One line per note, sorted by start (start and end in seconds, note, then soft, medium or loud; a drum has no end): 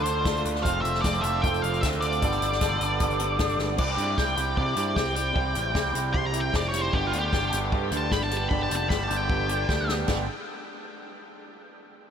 0.00 0.24 D2 loud
0.00 0.22 D3 loud
0.00 0.41 C5 medium
0.05 0.24 D4 medium
0.05 0.25 F4 medium
0.05 0.26 A4 medium
0.05 closed hi-hat medium
0.24 0.44 D2 medium
0.24 0.62 D3 medium
0.24 0.63 D4 medium
0.24 0.64 F4 medium
0.24 0.65 A4 medium
0.24 kick loud
0.24 snare loud
0.24 closed hi-hat loud
0.36 closed hi-hat soft
0.45 0.64 D2 loud
0.45 closed hi-hat medium
0.55 snare soft
0.62 0.83 F1 medium
0.62 1.22 F3 loud
0.62 1.02 A3 loud
0.62 1.02 C4 medium
0.62 1.03 F4 loud
0.62 1.05 A4 loud
0.62 0.81 F5 loud
0.62 kick loud
0.62 closed hi-hat loud
0.81 1.03 F1 medium
0.81 1.01 E5 loud
0.81 closed hi-hat medium
0.94 snare soft
1.01 1.23 F1 medium
1.01 1.43 A3 medium
1.01 1.25 C4 medium
1.01 1.24 F4 medium
1.01 1.23 D5 medium
1.01 kick loud
1.01 snare loud
1.01 closed hi-hat loud
1.06 1.22 A4 medium
1.14 closed hi-hat soft
1.21 1.42 F1 medium
1.21 1.45 A4 medium
1.21 1.41 E5 medium
1.21 closed hi-hat medium
1.25 1.43 C4 medium
1.25 1.44 F4 medium
1.41 1.63 F1 loud
1.41 1.82 F3 medium
1.41 1.81 A3 medium
1.41 1.64 C4 loud
1.41 1.63 F4 loud
1.41 1.62 G5 loud
1.41 kick loud
1.41 closed hi-hat loud
1.46 1.61 A4 loud
1.54 closed hi-hat soft
1.62 1.82 F1 medium
1.62 1.82 C4 medium
1.62 1.83 F4 medium
1.62 1.85 A4 medium
1.62 1.82 F5 medium
1.62 closed hi-hat medium
1.74 closed hi-hat soft
1.81 2.21 D2 medium
1.81 2.20 A3 medium
1.81 2.21 C4 medium
1.81 2.21 F4 medium
1.81 1.87 E5 loud
1.81 kick loud
1.81 snare loud
1.81 closed hi-hat loud
1.86 2.22 A4 medium
1.93 closed hi-hat medium
2.01 3.58 D5 medium
2.01 closed hi-hat medium
2.13 closed hi-hat soft
2.21 2.41 G1 medium
2.21 2.60 G3 medium
2.21 2.62 B3 loud
2.21 2.61 D4 loud
2.21 2.63 A4 loud
2.21 kick loud
2.21 closed hi-hat loud
2.32 closed hi-hat soft
2.41 2.60 G1 medium
2.41 closed hi-hat medium
2.52 snare soft
2.61 2.79 G1 medium
2.61 2.98 G3 medium
2.61 2.81 B3 medium
2.61 2.82 D4 medium
2.61 2.79 A4 medium
2.61 kick loud
2.61 snare loud
2.61 closed hi-hat loud
2.80 2.99 G1 medium
2.80 3.00 B3 medium
2.80 3.00 D4 medium
2.80 3.02 A4 medium
2.80 closed hi-hat medium
2.99 3.38 G1 medium
2.99 3.36 G3 medium
2.99 3.19 B3 loud
2.99 3.20 D4 loud
2.99 3.17 A4 loud
2.99 kick loud
2.99 closed hi-hat loud
3.10 closed hi-hat soft
3.19 3.39 B3 medium
3.19 3.38 D4 medium
3.19 3.39 A4 medium
3.19 closed hi-hat medium
3.37 3.58 G1 medium
3.37 3.76 G3 medium
3.37 3.77 B3 medium
3.37 3.77 D4 medium
3.37 3.78 A4 medium
3.37 kick loud
3.37 snare loud
3.37 closed hi-hat loud
3.49 closed hi-hat soft
3.58 3.79 G1 medium
3.58 snare medium
3.76 3.96 C2 medium
3.76 4.39 C3 medium
3.76 4.16 G3 medium
3.76 3.99 C4 medium
3.76 3.98 E4 medium
3.76 3.96 G4 medium
3.76 4.17 D5 medium
3.76 kick loud
3.76 crash loud
3.96 4.15 G2 medium
3.96 4.17 C4 medium
3.96 4.18 E4 medium
3.96 4.19 G4 medium
3.96 closed hi-hat medium
4.16 4.35 C2 medium
4.16 4.38 G3 medium
4.16 4.38 C4 medium
4.16 4.36 E4 medium
4.16 4.35 G4 medium
4.16 4.56 G5 medium
4.16 kick loud
4.16 snare loud
4.36 4.54 C2 medium
4.36 4.76 C3 medium
4.36 4.56 G3 medium
4.36 4.56 C4 medium
4.36 4.57 E4 medium
4.36 4.59 G4 medium
4.36 closed hi-hat medium
4.56 4.75 C3 medium
4.56 4.76 G3 medium
4.56 4.75 C4 medium
4.56 4.74 E4 medium
4.56 4.73 G4 medium
4.56 4.95 D5 medium
4.56 kick loud
4.74 4.94 G2 medium
4.74 5.16 C3 medium
4.74 4.94 G3 medium
4.74 4.95 C4 medium
4.74 4.95 E4 medium
4.74 4.97 G4 medium
4.74 closed hi-hat medium
4.94 5.31 C2 medium
4.94 5.33 G3 medium
4.94 5.17 C4 medium
4.94 5.15 E4 medium
4.94 5.14 G4 medium
4.94 5.14 G5 medium
4.94 kick loud
4.94 snare loud
5.14 5.33 C4 medium
5.14 5.34 E4 medium
5.14 5.35 G4 medium
5.14 5.92 G5 medium
5.14 snare soft
5.14 closed hi-hat medium
5.32 5.73 C3 medium
5.32 5.71 G3 medium
5.32 5.54 C4 medium
5.32 5.53 E4 medium
5.32 5.52 G4 loud
5.32 kick loud
5.37 5.53 C2 medium
5.52 5.73 A1 medium
5.52 5.72 C4 medium
5.52 5.73 E4 medium
5.52 5.75 G4 medium
5.52 closed hi-hat medium
5.72 5.93 C2 medium
5.72 5.94 G3 medium
5.72 5.92 C4 medium
5.72 5.91 E4 medium
5.72 5.91 G4 medium
5.72 kick loud
5.72 snare loud
5.92 6.12 C2 medium
5.92 6.33 C3 medium
5.92 6.11 G3 medium
5.92 6.11 C4 medium
5.92 6.13 E4 medium
5.92 6.14 G4 medium
5.92 closed hi-hat loud
6.12 6.49 C2 medium
6.12 6.33 G3 medium
6.12 6.31 C4 medium
6.12 6.31 E4 medium
6.12 6.31 G4 medium
6.12 6.26 C6 loud
6.12 kick loud
6.26 6.40 A#5 medium
6.31 6.74 C3 medium
6.31 6.51 G3 medium
6.31 6.52 C4 medium
6.31 6.53 E4 medium
6.31 6.55 G4 medium
6.31 closed hi-hat medium
6.41 6.54 G5 medium
6.52 6.88 F1 medium
6.52 6.93 G3 medium
6.52 6.74 C4 medium
6.52 6.72 E4 medium
6.52 6.71 G4 medium
6.52 kick loud
6.52 snare loud
6.56 6.68 D5 medium
6.69 6.95 G4 medium
6.69 6.81 C#5 medium
6.73 6.93 C4 medium
6.73 6.92 E4 medium
6.73 snare soft
6.73 closed hi-hat medium
6.81 6.94 C5 medium
6.92 7.11 G1 medium
6.92 7.53 G2 medium
6.92 7.32 D3 medium
6.92 7.14 G3 medium
6.92 7.13 B3 medium
6.92 7.12 D4 medium
6.92 7.07 G4 medium
6.92 7.11 G4 medium
6.92 kick loud
7.07 7.18 F4 medium
7.12 7.30 D2 medium
7.12 7.31 G3 medium
7.12 7.32 B3 medium
7.12 7.33 D4 medium
7.12 7.34 G4 medium
7.12 closed hi-hat medium
7.19 7.57 G4 loud
7.31 7.50 G1 medium
7.31 7.52 G3 medium
7.31 7.51 B3 medium
7.31 7.50 D4 medium
7.31 7.50 G4 medium
7.31 kick loud
7.31 snare loud
7.50 7.70 G1 medium
7.50 7.93 G2 medium
7.50 7.92 D3 medium
7.50 7.71 G3 medium
7.50 7.71 B3 medium
7.50 7.73 D4 medium
7.50 7.73 G4 medium
7.50 closed hi-hat medium
7.71 7.90 G2 medium
7.71 7.92 G3 medium
7.71 7.91 B3 medium
7.71 7.91 D4 medium
7.71 7.90 G4 medium
7.71 kick loud
7.91 8.09 D2 medium
7.91 8.49 G2 medium
7.91 8.32 D3 medium
7.91 8.08 G3 medium
7.91 8.09 B3 medium
7.91 8.10 D4 medium
7.91 8.11 G4 medium
7.91 closed hi-hat medium
7.97 8.12 A5 loud
8.08 8.46 G1 medium
8.08 8.32 G3 medium
8.08 8.32 B3 medium
8.08 8.30 D4 medium
8.08 8.29 G4 medium
8.08 8.23 B5 medium
8.08 kick loud
8.08 snare loud
8.24 8.36 A5 medium
8.30 8.49 G3 medium
8.30 8.50 B3 medium
8.30 8.51 D4 medium
8.30 8.52 G4 medium
8.30 closed hi-hat medium
8.37 8.49 A5 medium
8.49 8.69 G1 medium
8.49 8.90 G2 medium
8.49 8.90 D3 medium
8.49 8.70 G3 medium
8.49 8.69 B3 medium
8.49 8.69 D4 medium
8.49 8.67 G4 loud
8.49 8.63 B5 medium
8.49 kick loud
8.63 8.75 A5 medium
8.69 8.88 F1 medium
8.69 8.87 G3 medium
8.69 8.88 B3 medium
8.69 8.89 D4 medium
8.69 8.90 G4 medium
8.69 closed hi-hat loud
8.76 8.89 A5 medium
8.88 9.08 G1 medium
8.88 9.09 G3 medium
8.88 9.09 B3 medium
8.88 9.08 D4 medium
8.88 9.07 G4 medium
8.88 9.04 B5 medium
8.88 kick loud
8.88 snare loud
9.04 9.17 A5 medium
9.08 9.27 G1 medium
9.08 9.50 G2 medium
9.08 9.50 D3 medium
9.08 9.26 G3 medium
9.08 9.27 B3 medium
9.08 9.28 D4 medium
9.08 9.29 G4 medium
9.08 closed hi-hat loud
9.17 9.93 G5 medium
9.27 9.64 G1 medium
9.27 9.49 G3 medium
9.27 9.48 B3 medium
9.27 9.47 D4 medium
9.27 9.47 G4 medium
9.27 kick loud
9.48 9.90 G2 medium
9.48 9.90 D3 medium
9.48 9.66 G3 medium
9.48 9.67 B3 medium
9.48 9.67 D4 medium
9.48 9.68 G4 medium
9.48 closed hi-hat loud
9.67 10.04 D2 medium
9.67 9.89 G3 medium
9.67 9.88 B3 medium
9.67 9.87 D4 medium
9.67 9.86 G4 medium
9.67 kick loud
9.67 snare medium
9.87 10.06 G3 medium
9.87 10.07 B3 medium
9.87 10.06 D4 medium
9.87 10.06 G4 medium
9.87 snare medium
10.07 10.27 G1 medium
10.07 10.23 G2 medium
10.07 10.24 D3 medium
10.07 10.24 G3 loud
10.07 10.24 B3 loud
10.07 10.24 D4 loud
10.07 10.24 G4 medium
10.07 kick medium
10.07 snare loud
10.07 crash medium